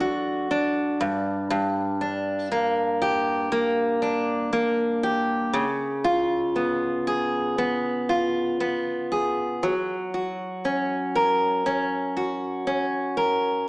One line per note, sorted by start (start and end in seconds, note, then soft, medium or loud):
0.00 1.10 F#3 medium
0.00 0.50 D4 medium
0.00 1.11 F#4 medium
0.00 1.11 A4 medium
0.51 2.01 D4 medium
1.01 1.49 G2 medium
1.50 5.54 G2 medium
2.01 4.01 D4 medium
2.52 3.51 A#3 medium
3.02 5.02 G4 medium
3.52 4.51 A#3 medium
4.02 5.64 D4 medium
4.53 5.64 A#3 medium
5.03 5.64 G4 medium
5.53 9.62 C#3 medium
6.04 8.08 F4 medium
6.56 7.57 B3 medium
7.07 9.10 G#4 medium
7.58 8.59 B3 medium
8.09 9.73 F4 medium
8.60 9.73 B3 medium
9.12 9.73 G#4 medium
9.63 13.67 F#3 medium
10.14 12.15 F#4 soft
10.65 11.65 C#4 soft
11.15 13.17 A#4 medium
11.66 12.66 C#4 medium
12.17 13.69 F#4 medium
12.67 13.69 C#4 medium
13.17 13.69 A#4 medium